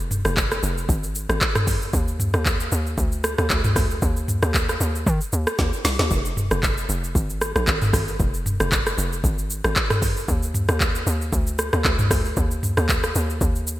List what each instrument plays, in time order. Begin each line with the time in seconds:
Already playing: log drum bass F1
0.11 mid tom, shaker
0.25 log drum bass F1, cross-stick, shaker
0.37 kick, clap, shaker
0.51 cross-stick, shaker
0.63 log drum bass F1, shaker
0.78 shaker
0.89 log drum bass G#1, kick, shaker
1.03 shaker
1.15 shaker
1.29 log drum bass G#1, cross-stick, shaker
1.41 kick, clap, shaker
1.55 cross-stick, mid tom, shaker
1.67 kick, open hi-hat, shaker
1.82 shaker
1.93 log drum bass D#2, kick, shaker
2.08 shaker
2.20 mid tom, shaker
2.34 log drum bass D#2, cross-stick, shaker
2.46 kick, clap, shaker
2.60 shaker
2.72 log drum bass D#2, shaker
2.87 shaker
2.98 log drum bass D2, kick, shaker
3.12 shaker
3.24 cross-stick, shaker
3.38 log drum bass D#2, cross-stick, shaker
3.50 log drum bass D2, kick, clap, shaker
3.64 mid tom, shaker
3.76 log drum bass D2, kick, cross-stick, open hi-hat, shaker
3.91 shaker
4.02 log drum bass D#2, kick, shaker
4.17 shaker
4.28 mid tom, shaker
4.43 log drum bass D#2, cross-stick, shaker
4.54 kick, clap, shaker
4.69 cross-stick, shaker
4.80 log drum bass D#2, shaker
4.95 shaker
5.07 log drum bass D#3, kick, shaker
5.21 shaker
5.33 log drum bass D#2, shaker
5.47 cross-stick, shaker
5.59 log drum bass D#2, kick, snare, shaker
5.73 shaker
5.85 log drum bass C2, snare, open hi-hat, shaker
5.99 log drum bass D#2, snare, shaker
6.11 log drum bass F1, kick, shaker
6.25 shaker
6.37 mid tom, shaker
6.51 log drum bass F1, cross-stick, shaker
6.63 kick, clap, shaker
6.78 shaker
6.89 log drum bass F1, shaker
7.04 shaker
7.15 log drum bass G#1, kick, shaker
7.30 shaker
7.41 cross-stick, shaker
7.56 log drum bass A#1, cross-stick, shaker
7.67 log drum bass G#1, kick, clap, shaker
7.82 mid tom, shaker
7.93 log drum bass G#1, kick, cross-stick, open hi-hat, shaker
8.08 shaker
8.20 log drum bass F1, kick, shaker
8.34 shaker
8.46 mid tom, shaker
8.60 log drum bass F1, cross-stick, shaker
8.72 kick, clap, shaker
8.87 cross-stick, shaker
8.98 log drum bass F1, shaker
9.13 shaker
9.24 log drum bass G#1, kick, shaker
9.38 shaker
9.50 shaker
9.64 log drum bass G#1, cross-stick, shaker
9.76 kick, clap, shaker
9.90 cross-stick, mid tom, shaker
10.02 kick, open hi-hat, shaker
10.17 shaker
10.28 log drum bass D#2, kick, shaker
10.43 shaker
10.54 mid tom, shaker
10.69 log drum bass D#2, cross-stick, shaker
10.81 kick, clap, shaker
10.95 shaker
11.07 log drum bass D#2, shaker
11.21 shaker
11.33 log drum bass D2, kick, shaker
11.47 shaker
11.59 cross-stick, shaker
11.73 log drum bass D#2, cross-stick, shaker
11.84 log drum bass D2, kick, clap, shaker
11.99 mid tom, shaker
12.11 log drum bass D2, kick, cross-stick, open hi-hat, shaker
12.25 shaker
12.37 log drum bass D#2, kick, shaker
12.51 shaker
12.63 mid tom, shaker
12.77 log drum bass D#2, cross-stick, shaker
12.89 kick, clap, shaker
13.04 cross-stick, shaker
13.15 log drum bass D#2, shaker
13.30 shaker
13.41 log drum bass D#2, kick, shaker
13.56 shaker
13.67 shaker